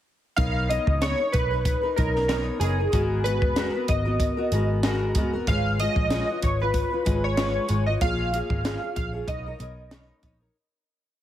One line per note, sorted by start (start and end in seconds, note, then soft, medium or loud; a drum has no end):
0.36 0.77 B1 medium
0.36 0.69 B3 medium
0.36 0.69 D#4 medium
0.36 0.70 A#4 medium
0.36 0.70 C#5 medium
0.36 0.70 F5 loud
0.36 kick medium
0.36 closed hi-hat medium
0.69 1.00 B3 soft
0.69 1.01 D#4 medium
0.69 1.01 A#4 medium
0.69 1.01 C#5 medium
0.69 1.02 D#5 medium
0.69 closed hi-hat medium
0.87 1.13 C#2 medium
0.87 kick medium
1.01 1.19 B3 medium
1.01 1.19 D#4 medium
1.01 1.18 A#4 medium
1.01 1.34 C#5 medium
1.01 1.17 C#5 medium
1.01 snare medium
1.01 closed hi-hat medium
1.19 1.52 D#4 soft
1.19 1.51 A#4 soft
1.32 1.73 B1 medium
1.32 1.98 B4 medium
1.32 kick medium
1.32 closed hi-hat medium
1.51 1.84 D#4 soft
1.51 1.80 C#5 soft
1.65 kick medium
1.65 closed hi-hat medium
1.81 1.97 D#4 soft
1.81 1.97 A#4 soft
1.81 1.96 C#5 soft
1.96 2.49 B1 medium
1.96 2.28 B3 soft
1.96 2.29 D#4 medium
1.96 2.27 A#4 medium
1.96 2.29 A#4 medium
1.96 2.30 C#5 medium
1.96 kick medium
1.96 closed hi-hat medium
2.16 snare soft
2.28 2.59 B3 medium
2.28 2.61 D#4 medium
2.28 2.42 A#4 medium
2.28 2.61 A#4 medium
2.28 2.62 C#5 medium
2.28 snare loud
2.28 closed hi-hat medium
2.60 2.86 F#1 medium
2.60 2.78 B3 medium
2.60 2.79 D#4 medium
2.60 3.26 G#4 medium
2.60 2.79 A#4 medium
2.60 2.77 C#5 medium
2.60 closed hi-hat medium
2.78 2.93 A#4 soft
2.78 2.93 C#5 soft
2.92 3.41 G#1 medium
2.92 3.23 G#3 medium
2.92 3.24 B3 medium
2.92 3.25 F#4 medium
2.92 3.25 A#4 medium
2.92 kick medium
2.92 closed hi-hat medium
3.24 3.55 G#3 medium
3.24 3.55 B3 medium
3.24 3.56 F#4 medium
3.24 3.84 B4 medium
3.24 closed hi-hat medium
3.41 3.67 F#1 medium
3.41 kick medium
3.56 3.73 G#3 medium
3.56 3.74 B3 medium
3.56 3.74 F#4 medium
3.56 3.72 A#4 medium
3.56 snare loud
3.56 closed hi-hat medium
3.74 4.06 B3 soft
3.74 4.05 F#4 soft
3.74 4.04 A#4 medium
3.88 4.28 G#1 medium
3.88 4.80 D#5 medium
3.88 kick medium
3.88 closed hi-hat medium
4.05 4.38 B3 soft
4.05 4.37 F#4 soft
4.05 4.36 A#4 soft
4.20 kick medium
4.20 closed hi-hat medium
4.37 4.52 B3 soft
4.37 4.52 F#4 soft
4.37 4.51 A#4 soft
4.52 5.15 G#1 medium
4.52 4.83 G#3 medium
4.52 4.83 B3 medium
4.52 4.84 F#4 medium
4.52 4.84 A#4 medium
4.52 closed hi-hat medium
4.83 5.15 G#3 medium
4.83 5.15 B3 medium
4.83 5.16 F#4 medium
4.83 5.16 A#4 medium
4.83 snare loud
4.83 closed hi-hat medium
5.15 5.41 F#1 medium
5.15 5.33 G#3 medium
5.15 5.33 B3 medium
5.15 5.34 F#4 medium
5.15 5.32 A#4 medium
5.15 kick medium
5.15 closed hi-hat medium
5.33 5.48 B3 soft
5.33 5.48 F#4 soft
5.33 5.47 A#4 medium
5.47 5.86 G#1 medium
5.47 5.79 G#3 medium
5.47 5.80 F4 medium
5.47 5.80 B4 medium
5.47 5.80 C#5 medium
5.47 5.80 F5 medium
5.47 kick loud
5.47 closed hi-hat medium
5.80 6.11 G#3 medium
5.80 6.12 F4 medium
5.80 6.12 B4 medium
5.80 6.12 C#5 medium
5.80 6.39 D#5 medium
5.80 closed hi-hat medium
5.96 6.21 A#1 medium
5.96 kick medium
6.10 6.29 G#3 medium
6.10 6.29 F4 medium
6.10 6.29 B4 medium
6.10 6.28 C#5 medium
6.10 snare loud
6.10 closed hi-hat medium
6.29 6.62 F4 soft
6.29 6.60 B4 soft
6.29 6.59 C#5 soft
6.42 6.82 G#1 medium
6.42 6.59 C#5 medium
6.42 kick medium
6.42 closed hi-hat medium
6.60 6.92 F4 soft
6.60 6.91 B4 medium
6.60 7.26 B4 medium
6.60 6.89 C#5 medium
6.74 kick medium
6.74 closed hi-hat medium
6.91 7.05 F4 soft
6.91 7.05 B4 soft
6.91 7.05 C#5 soft
7.05 7.57 G#1 medium
7.05 7.36 G#3 medium
7.05 7.37 F4 medium
7.05 7.37 B4 medium
7.05 7.38 C#5 medium
7.05 kick medium
7.05 closed hi-hat medium
7.24 7.36 C#5 medium
7.37 7.67 G#3 medium
7.37 7.68 F4 medium
7.37 7.68 B4 medium
7.37 7.83 C#5 medium
7.37 7.70 C#5 medium
7.37 snare loud
7.37 closed hi-hat medium
7.68 7.95 G#1 medium
7.68 7.86 G#3 medium
7.68 7.87 F4 medium
7.68 7.86 B4 medium
7.68 7.85 C#5 medium
7.68 closed hi-hat medium
7.86 8.01 F4 soft
7.86 8.01 B4 soft
7.86 8.00 C#5 soft
7.86 7.93 D#5 medium
8.01 8.40 A#1 medium
8.01 8.32 A#3 medium
8.01 8.33 F4 medium
8.01 8.33 G#4 medium
8.01 8.34 C#5 medium
8.01 8.95 F5 loud
8.01 kick medium
8.01 closed hi-hat medium
8.33 8.63 A#3 medium
8.33 8.64 F4 medium
8.33 8.65 G#4 medium
8.33 8.65 C#5 medium
8.33 closed hi-hat medium
8.50 8.75 G#1 medium
8.50 kick medium
8.64 8.82 A#3 medium
8.64 8.82 F4 medium
8.64 8.82 G#4 medium
8.64 8.80 C#5 medium
8.64 snare loud
8.64 closed hi-hat medium
8.81 9.13 G#4 medium
8.81 9.12 C#5 medium
8.96 9.22 A#1 loud
8.96 9.10 F5 medium
8.96 kick medium
8.96 closed hi-hat medium
9.13 9.29 F4 soft
9.13 9.28 G#4 medium
9.13 9.27 C#5 medium
9.27 9.53 B1 medium
9.27 9.45 B3 medium
9.27 9.46 D#4 medium
9.27 9.46 A#4 medium
9.27 9.45 C#5 medium
9.27 10.19 D#5 medium
9.27 kick medium
9.27 closed hi-hat medium
9.46 9.59 D#4 soft
9.46 9.60 A#4 soft
9.46 9.60 C#5 soft
9.59 10.11 B1 medium
9.59 9.90 B3 medium
9.59 9.91 D#4 medium
9.59 9.91 A#4 medium
9.59 9.92 C#5 medium
9.59 closed hi-hat medium
9.91 10.21 B3 medium
9.91 10.22 D#4 medium
9.91 10.24 A#4 medium
9.91 10.24 C#5 medium
9.91 snare loud
9.91 closed hi-hat medium
10.22 10.48 A#1 medium
10.22 10.40 B3 medium
10.22 10.41 D#4 medium
10.22 10.40 A#4 medium
10.22 10.39 C#5 medium
10.22 kick medium
10.22 closed hi-hat medium
10.40 10.56 D#4 soft
10.40 10.55 A#4 soft
10.40 10.55 C#5 soft